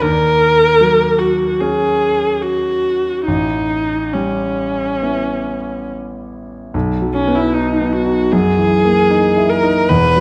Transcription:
0.00 grand piano D#2, viola A#4
0.81 grand piano F#3
1.19 viola F#4
1.60 grand piano C#4 F#4, viola G#4
2.42 viola F#4
3.27 grand piano A1, viola D#4
4.14 grand piano G3, viola C#4
5.02 grand piano B3 E4
6.74 grand piano B1
7.01 grand piano F#3
7.14 viola C#4
7.28 grand piano B3
7.35 viola E4
7.53 viola D#4, grand piano D#4
7.81 grand piano B3
7.93 viola F#4
8.06 grand piano D#4
8.32 grand piano F#2, viola G#4
8.58 grand piano E3
8.84 grand piano A#3
9.10 grand piano D#4
9.37 grand piano E4
9.49 viola A#4
9.63 grand piano D#4
9.89 grand piano E1 E2, viola B4
10.16 grand piano F#3

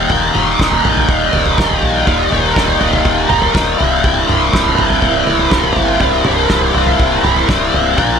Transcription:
Already playing: overdriven electric guitar G3 A#3 D#4
0.09 fingered electric bass D#1, overdriven electric guitar D#2 A#2 D#3 G3 A#3 D#4, kick, floor tom
0.34 fingered electric bass D#1, overdriven electric guitar D#3 G3 A#3 D#4, mid tom
0.58 fingered electric bass D#1, overdriven electric guitar D#2 A#2 D#3 G3 A#3 D#4, kick, snare
0.72 floor tom
0.83 fingered electric bass A#1, overdriven electric guitar D#3 G3 A#3 D#4, floor tom, mid tom
0.97 floor tom
1.09 fingered electric bass D#1, kick, floor tom
1.31 fingered electric bass D#1, overdriven electric guitar D#3 G3 A#3 D#4, floor tom
1.46 floor tom
1.57 fingered electric bass D#1, overdriven electric guitar D#3 G3 A#3 D#4, kick, snare, mid tom
1.71 floor tom
1.82 fingered electric bass A#1, floor tom
2.06 fingered electric bass D#1, overdriven electric guitar D#2 A#2 D#3 G3 A#3 D#4, kick, floor tom
2.31 fingered electric bass D#1, overdriven electric guitar D#3 G3 A#3 D#4, floor tom, mid tom
2.55 fingered electric bass D#1, overdriven electric guitar D#2 A#2 D#3 G3 A#3 D#4, kick, snare
2.68 floor tom
2.80 fingered electric bass D#1, overdriven electric guitar D#3 G3 A#3 D#4, floor tom
2.93 floor tom
3.05 fingered electric bass D#1, kick, floor tom
3.29 fingered electric bass D#1, overdriven electric guitar D#3 G3 A#3 D#4, floor tom, mid tom
3.42 floor tom
3.54 fingered electric bass D#1, overdriven electric guitar D#3 G3 A#3 D#4, kick, snare, mid tom
3.78 fingered electric bass C1, overdriven electric guitar C2 G2 C3 G3 A#3 E4, floor tom
4.02 fingered electric bass C1, overdriven electric guitar C2 G2 C3 G3 A#3 E4, string machine E4 A#4 C5 G5, kick, floor tom
4.27 fingered electric bass C1, overdriven electric guitar C3 G3 A#3 E4, mid tom
4.52 fingered electric bass C1, overdriven electric guitar C2 G2 C3 G3 A#3 E4, kick, snare
4.66 floor tom
4.76 fingered electric bass G1, overdriven electric guitar C3 G3 A#3 E4, floor tom, mid tom
4.90 floor tom
5.02 fingered electric bass C1, kick, floor tom
5.26 fingered electric bass C1, overdriven electric guitar C3 G3 A#3 E4, floor tom
5.39 floor tom
5.50 fingered electric bass C1, overdriven electric guitar C3 G3 A#3 E4, kick, snare, mid tom
5.64 floor tom
5.76 fingered electric bass G1, floor tom
6.00 fingered electric bass C1, overdriven electric guitar C2 G2 C3 G3 A#3 E4, string machine A5, kick, floor tom
6.25 fingered electric bass C1, overdriven electric guitar C3 G3 A#3 E4, floor tom, mid tom
6.49 fingered electric bass C1, overdriven electric guitar C2 G2 C3 G3 A#3 E4, kick, snare
6.61 floor tom
6.74 fingered electric bass C1, overdriven electric guitar C3 G3 A#3 E4, floor tom
6.87 floor tom
6.99 fingered electric bass C1, kick, floor tom
7.23 fingered electric bass C1, overdriven electric guitar G3 A#3 E4, floor tom, mid tom
7.27 overdriven electric guitar C3
7.36 floor tom
7.47 fingered electric bass C1, overdriven electric guitar C3 G3 A#3 E4, kick, snare, mid tom
7.73 fingered electric bass C1, floor tom
7.97 fingered electric bass A#1, overdriven electric guitar A#2 F3 A#3 D4 F4 A#4, string machine F4 D5 G5, kick, floor tom
8.01 string machine A#4

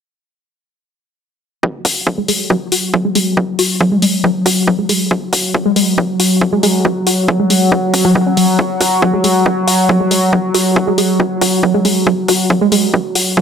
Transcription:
1.63 synth drone F#3, synth arpeggio sound F#3, kick
1.85 synth arpeggio sound F#4, kick, open hi-hat
2.07 synth arpeggio sound F#3, kick
2.18 synth arpeggio sound G#3
2.28 synth arpeggio sound G#3, open hi-hat
2.50 synth arpeggio sound F#3, kick
2.72 synth arpeggio sound F#4, open hi-hat
2.94 synth arpeggio sound F#3, kick
3.05 synth arpeggio sound G#3
3.15 synth arpeggio sound G#3, open hi-hat
3.37 synth arpeggio sound F#3, kick
3.59 synth arpeggio sound F#4, open hi-hat
3.81 synth arpeggio sound F#3, kick
3.92 synth arpeggio sound G#3
4.02 synth arpeggio sound G#3, open hi-hat
4.24 synth arpeggio sound F#3, kick
4.46 synth arpeggio sound F#4, kick, open hi-hat
4.68 synth arpeggio sound F#3, kick
4.79 synth arpeggio sound G#3
4.89 synth arpeggio sound G#3, open hi-hat
5.11 synth arpeggio sound F#3, kick
5.33 synth arpeggio sound F#4, kick, open hi-hat
5.54 synth arpeggio sound F#3, kick
5.66 synth arpeggio sound G#3
5.76 synth arpeggio sound G#3, open hi-hat
5.98 synth arpeggio sound F#3, kick
6.20 synth arpeggio sound F#4, open hi-hat
6.41 synth arpeggio sound F#3, kick
6.53 synth arpeggio sound G#3
6.63 synth arpeggio sound G#3, open hi-hat
6.85 synth arpeggio sound F#3, kick
7.07 synth arpeggio sound F#4, open hi-hat
7.28 synth arpeggio sound F#3, kick
7.40 synth arpeggio sound G#3
7.50 synth arpeggio sound G#3, open hi-hat
7.72 synth arpeggio sound F#3, kick
7.94 synth arpeggio sound C#4, kick, open hi-hat
8.05 synth arpeggio sound F#3
8.15 synth arpeggio sound F#3, kick
8.27 synth arpeggio sound C#4
8.37 synth arpeggio sound F#3, open hi-hat
8.59 synth arpeggio sound F#3, kick
8.81 synth arpeggio sound F#4, kick, open hi-hat
9.02 synth arpeggio sound F#3, kick
9.13 synth arpeggio sound G#3
9.24 synth arpeggio sound G#3, open hi-hat
9.46 synth arpeggio sound F#3, kick
9.67 synth arpeggio sound F#4, open hi-hat
9.89 synth arpeggio sound F#3, kick
10.00 synth arpeggio sound G#3
10.11 synth arpeggio sound G#3, open hi-hat
10.33 synth arpeggio sound F#3, kick
10.54 synth arpeggio sound F#4, open hi-hat
10.76 synth arpeggio sound F#3, kick
10.87 synth arpeggio sound G#3
10.98 synth arpeggio sound G#3, open hi-hat
11.20 synth arpeggio sound F#3, kick
11.41 synth arpeggio sound F#4, kick, open hi-hat
11.63 synth arpeggio sound F#3, kick
11.74 synth arpeggio sound G#3
11.85 synth arpeggio sound G#3, open hi-hat
12.07 synth arpeggio sound F#3, kick
12.28 synth arpeggio sound F#4, kick, open hi-hat
12.50 synth arpeggio sound F#3, kick
12.61 synth arpeggio sound G#3
12.72 synth arpeggio sound G#3, open hi-hat
12.94 synth arpeggio sound F#3, kick
13.15 synth arpeggio sound F#4, open hi-hat
13.37 synth arpeggio sound F#3, kick

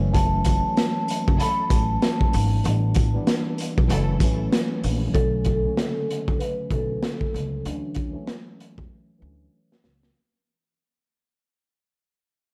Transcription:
Already playing: upright bass F#1, tine electric piano E3 F#3 A3 C#4 E5
0.11 tine electric piano E3 F#3 A3 C#4, vibraphone A5, kick, sleigh bells
0.15 closed hi-hat
0.44 kick, closed hi-hat, sleigh bells
0.65 tine electric piano E3 F#3 A3 C#4
0.77 snare, closed hi-hat, sleigh bells
1.08 closed hi-hat, sleigh bells
1.28 upright bass F#1, kick
1.39 string section F#3 E4 A4, vibraphone B5, closed hi-hat, sleigh bells
1.69 upright bass A1, tine electric piano E3 F#3 A3 C#4, vibraphone A5, kick, closed hi-hat, sleigh bells
2.02 snare, closed hi-hat, sleigh bells
2.21 kick
2.33 upright bass G#1, open hi-hat, sleigh bells
2.64 upright bass A1, tine electric piano E3 G3 B3 D4, closed hi-hat, sleigh bells
2.94 kick, closed hi-hat, sleigh bells
3.14 tine electric piano E3 G3 B3 D4
3.27 snare, closed hi-hat, sleigh bells
3.58 closed hi-hat, sleigh bells
3.78 upright bass B1, kick
3.88 upright bass F#1, tine electric piano E3 F#3 A3 C#4, string section F#3 E4 A4, closed hi-hat, sleigh bells
4.20 upright bass A1, tine electric piano E3 F#3 A3, kick, closed hi-hat, sleigh bells
4.24 tine electric piano C#4
4.52 snare, closed hi-hat, sleigh bells
4.83 upright bass A#1, open hi-hat, sleigh bells
5.11 upright bass B1, tine electric piano D3 F#3 A3 C#4, vibraphone A4, kick, closed hi-hat
5.45 kick, closed hi-hat
5.63 tine electric piano C#3 F#3 A3 C#4
5.70 tine electric piano D3
5.77 snare, closed hi-hat
6.11 closed hi-hat
6.28 upright bass D2, kick
6.39 vibraphone B4, closed hi-hat
6.69 upright bass B1, tine electric piano D3 F#3 A3 C#4, vibraphone A4, kick, closed hi-hat
7.03 snare, closed hi-hat
7.21 kick
7.34 upright bass C#2, closed hi-hat
7.65 upright bass D2, tine electric piano E3 F#3 A3 C#4, closed hi-hat
7.95 kick, closed hi-hat
8.12 tine electric piano E3 F#3 A3 C#4
8.27 snare, closed hi-hat
8.60 closed hi-hat
8.78 upright bass E2, kick
9.18 upright bass D2, tine electric piano E3 F#3 A3 C#4
9.72 snare
9.84 upright bass C#2, snare
10.03 snare

